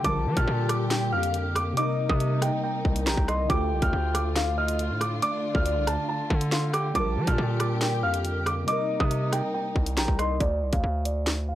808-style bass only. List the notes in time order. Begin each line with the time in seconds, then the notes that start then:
0.04 A#1
0.26 F3
0.37 A#2
0.48 A#2
1.12 F2
2.09 C3
2.85 C2
3.07 A#1
3.17 C2
3.50 D2
3.71 C2
3.82 D2
3.93 D2
4.90 A2
5.55 D2
5.76 C2
5.87 D2
6.30 D3
6.95 A#1
7.17 F3
7.27 A#2
7.38 A#2
8.03 F2
9.00 C3
9.76 C2
9.97 A#1
10.08 C2
10.40 D2
10.62 C2
10.73 D2
10.84 D2